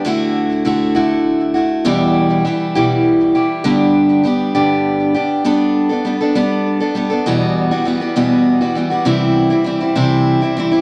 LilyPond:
\new Staff \with { instrumentName = "Steel-string acoustic guitar" } { \time 6/8 \key g \major \tempo 4. = 67 <d a e' fis'>4 <d a e' fis'>8 <d a e' fis'>4 <a e' fis'>8 | <e, b, e g e' g'>4 <e g e' g'>8 <e, b, e g e' g'>4 <e g e' g'>8 | <g, d g b d' g'>4 <g b d' g'>8 <g, d g b d' g'>4 <g b d' g'>8 | <g b d' a'>8. <b d' a'>16 <g b d' a'>16 <b d' a'>16 <g b d' a'>8. <b d' a'>16 <g b d' a'>16 <b d' a'>16 |
<e, b, e g b fis'>8. <e g b fis'>16 <e g b fis'>16 <e g b fis'>16 <e, b, e g b fis'>8. <e g b fis'>16 <e g b fis'>16 <e g b fis'>16 | <c e g c' e'>8. <g c' e'>16 <e g c' e'>16 <g c' e'>16 <c e g c' e'>8. <g c' e'>16 <e g c' e'>16 <g c' e'>16 | }